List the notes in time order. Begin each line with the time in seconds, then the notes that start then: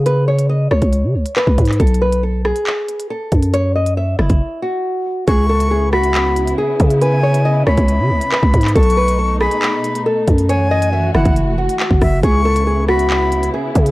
Already playing: C#3
0.06 B4, closed hi-hat
0.28 C#5
0.39 closed hi-hat
0.49 D#5
0.71 C#2 C#5, cross-stick
0.82 C#2, kick, closed hi-hat
0.93 closed hi-hat
1.04 C#3
1.15 C#2
1.26 closed hi-hat
1.36 B4, clap
1.47 C#2, kick
1.58 G#2, kick, closed hi-hat, open hi-hat
1.65 clap, closed hi-hat
1.73 closed hi-hat
1.80 B1 A4, kick, closed hi-hat
1.87 closed hi-hat
1.94 closed hi-hat
2.02 B4
2.12 closed hi-hat
2.23 A4
2.45 G#4, cross-stick
2.56 closed hi-hat
2.67 clap
2.88 closed hi-hat
3.00 closed hi-hat
3.10 A4
3.32 F#2, kick, closed hi-hat
3.43 closed hi-hat
3.54 C#5, closed hi-hat
3.76 D#5
3.86 closed hi-hat
3.97 E5
4.19 F#1 E4, cross-stick
4.30 F#1, kick, closed hi-hat
4.62 F#4
5.27 C#2 C#3 B3 E4 G#4 C#6, kick, closed hi-hat
5.49 A4
5.60 closed hi-hat
5.71 G#4
5.93 F#4 B5, cross-stick
6.04 closed hi-hat
6.15 clap
6.36 closed hi-hat
6.47 closed hi-hat
6.58 G#4
6.80 C#3, kick, closed hi-hat
6.90 closed hi-hat
7.01 B4 G#5, closed hi-hat
7.23 C#5
7.34 closed hi-hat
7.45 D#5
7.67 C#2 C#5 B5, cross-stick
7.77 C#2, kick, closed hi-hat
7.88 closed hi-hat
7.99 C#3
8.10 C#2
8.21 closed hi-hat
8.32 B4, clap
8.43 C#2, kick
8.54 G#2, kick, closed hi-hat, open hi-hat
8.61 clap, closed hi-hat
8.68 closed hi-hat
8.75 B1 B2 A3 D#4 A4 C#6, kick, closed hi-hat
8.83 closed hi-hat
8.90 closed hi-hat
8.97 B4
9.08 closed hi-hat
9.19 A4
9.41 G#4 B5, cross-stick
9.51 closed hi-hat
9.62 clap
9.84 closed hi-hat
9.95 closed hi-hat
10.06 A4
10.28 F#2, kick, closed hi-hat
10.38 closed hi-hat
10.49 E3 A3 F#4 C#5 G#5, closed hi-hat
10.71 D#5
10.82 closed hi-hat
10.93 E5
11.14 F#1 E4 F#5, cross-stick
11.25 F#1, kick, closed hi-hat
11.36 closed hi-hat
11.47 E1
11.58 F#1 F#4
11.69 closed hi-hat
11.80 clap
11.91 F#1, kick
12.02 F#1 E5, kick, cross-stick, open hi-hat
12.23 C#2 C#3 B3 E4 G#4 C#6, kick, closed hi-hat
12.45 A4
12.56 closed hi-hat
12.67 G#4
12.88 F#4 B5, cross-stick
12.99 closed hi-hat
13.10 clap
13.32 closed hi-hat
13.43 closed hi-hat
13.54 G#4
13.75 C#3, kick, closed hi-hat
13.86 closed hi-hat